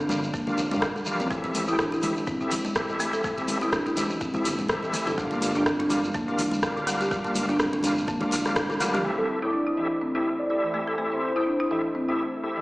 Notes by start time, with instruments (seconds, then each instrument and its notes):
Already playing: analog synth bass G1
0.09 marimba D3, tonewheel organ D4 F4 G4 A#4 F5, high conga, low conga, shekere
0.23 shekere
0.34 marimba A#3, kick, muted conga, shekere
0.47 marimba D4, tonewheel organ D4 F4 G4 A#4 F5, high conga, low conga, shekere
0.58 analog synth bass F1, marimba D3, muted conga, shekere
0.71 analog synth bass G2, tonewheel organ D4 F4 G4 A#4 F5, high conga, shekere
0.82 kick, cross-stick, muted conga, shekere
0.96 marimba G3, high conga, shekere
1.06 marimba F3, tonewheel organ D4 F4 G4 A#4 F5, low conga, shekere
1.20 analog synth bass A1, marimba C4, muted conga, shekere
1.30 marimba A3, tonewheel organ C4 E4 G4 A4 E5, kick, shekere
1.44 marimba C4, muted conga, shekere
1.55 analog synth bass A1, open hi-hat, high conga, shekere
1.67 tonewheel organ C4 E4 G4 A4 G5, marimba E4, muted conga, shekere
1.79 marimba D4, kick, cross-stick, shekere
1.92 marimba E4, muted conga, shekere
2.02 marimba E3, tonewheel organ C4 E4 G4 A4 E5, open hi-hat, high conga, low conga, shekere
2.17 shekere
2.27 analog synth bass E1, marimba C4, kick, muted conga, shekere
2.41 tonewheel organ C4 E4 G4 A4 E5, marimba E4, shekere
2.51 open hi-hat, muted conga, high conga, low conga, shekere
2.65 high conga, shekere
2.75 tonewheel organ C4 E4 G4 A4 E5, kick, cross-stick, muted conga, shekere
2.89 marimba E3, shekere
2.99 marimba A3, open hi-hat, shekere
3.13 marimba A4, muted conga, shekere
3.24 marimba A3, tonewheel organ C4 E4 G4 A4 E5, kick, shekere
3.37 marimba C4, muted conga, shekere
3.48 analog synth bass A1, open hi-hat, high conga, shekere
3.61 tonewheel organ C4 E4 G4 A4 G5, marimba E4, muted conga, shekere
3.72 marimba D4, kick, cross-stick, shekere
3.86 marimba E4, muted conga, shekere
3.97 marimba E3, tonewheel organ C4 E4 G4 A4 E5, open hi-hat, high conga, low conga, shekere
4.10 shekere
4.21 marimba C4, kick, muted conga, shekere
4.34 tonewheel organ C4 E4 G4 A4 E5, marimba E4, high conga, low conga, shekere
4.45 analog synth bass G1, open hi-hat, muted conga, shekere
4.59 analog synth bass E1, high conga, shekere
4.69 tonewheel organ C4 E4 G4 A4 E5, kick, cross-stick, muted conga, shekere
4.83 marimba E3, high conga, shekere
4.93 marimba A3, open hi-hat, low conga, shekere
5.07 analog synth bass G1, marimba A4, muted conga, shekere
5.18 marimba G3, tonewheel organ D4 F4 G4 A#4 F5, kick, shekere
5.31 marimba A#3, muted conga, shekere
5.41 analog synth bass G1, open hi-hat, high conga, shekere
5.55 marimba D4, tonewheel organ D4 F4 G4 A#4 G5, muted conga, shekere
5.66 marimba C4, kick, cross-stick, shekere
5.80 marimba D4, muted conga, shekere
5.90 marimba D3, tonewheel organ D4 F4 G4 A#4 F5, open hi-hat, high conga, low conga, shekere
6.04 shekere
6.14 analog synth bass D1, marimba A#3, kick, muted conga, shekere
6.28 marimba D4, tonewheel organ D4 F4 G4 A#4 F5, shekere
6.38 open hi-hat, muted conga, high conga, low conga, shekere
6.51 high conga, shekere
6.62 tonewheel organ D4 F4 G4 A#4 F5, kick, cross-stick, muted conga, shekere
6.76 marimba D3, shekere
6.87 marimba G3, open hi-hat, shekere
7.01 marimba G4, muted conga, shekere
7.11 marimba G3, tonewheel organ D4 F4 G4 A#4 F5, kick, shekere
7.24 marimba A#3, muted conga, shekere
7.35 analog synth bass G1, open hi-hat, high conga, shekere
7.49 marimba D4, tonewheel organ D4 F4 G4 A#4 G5, muted conga, shekere
7.59 marimba C4, kick, cross-stick, shekere
7.73 marimba D4, muted conga, shekere
7.83 marimba D3, tonewheel organ D4 F4 G4 A#4 F5, open hi-hat, high conga, low conga, shekere
7.98 shekere
8.08 marimba A#3, kick, muted conga, shekere
8.21 marimba D4, tonewheel organ D4 F4 G4 A#4 F5, high conga, low conga, shekere
8.31 analog synth bass D1, open hi-hat, muted conga, shekere
8.45 tonewheel organ D4 F4 G4 A#4 F5, cross-stick, high conga, shekere
8.56 kick, cross-stick, high tom, muted conga, shekere
8.70 marimba D3, high tom, high conga, shekere
8.80 marimba G3, tonewheel organ D4 F4 G4 A#4 F5, open hi-hat, low conga, shekere
8.94 marimba G4, mid tom, muted conga, shekere
9.04 analog synth pad A3 E4 A4 C5, marimba A3, tonewheel organ C4 E4 G4 A4 E5
9.18 marimba C4, analog synth lead A4
9.29 analog synth lead A4
9.42 tonewheel organ C4 E4 G4 A4 G5, marimba E4, analog synth lead D5
9.53 marimba D4
9.67 marimba E4
9.77 marimba E3, tonewheel organ C4 E4 G4 A4 E5
10.01 marimba C4
10.15 tonewheel organ C4 E4 G4 A4 E5, marimba E4
10.39 analog synth lead D5
10.50 tonewheel organ C4 E4 G4 A4 E5, analog synth lead D5
10.63 marimba E3
10.74 marimba A3
10.88 marimba A4
10.98 marimba A3, tonewheel organ C4 E4 G4 A4 E5
11.12 marimba C4, analog synth lead C5
11.36 tonewheel organ C4 E4 G4 A4 G5, marimba E4
11.47 marimba D4
11.60 marimba E4
11.71 marimba E3, tonewheel organ C4 E4 G4 A4 E5
11.95 marimba C4
12.09 tonewheel organ C4 E4 G4 A4 E5, marimba E4
12.44 tonewheel organ C4 E4 G4 A4 E5
12.57 marimba E3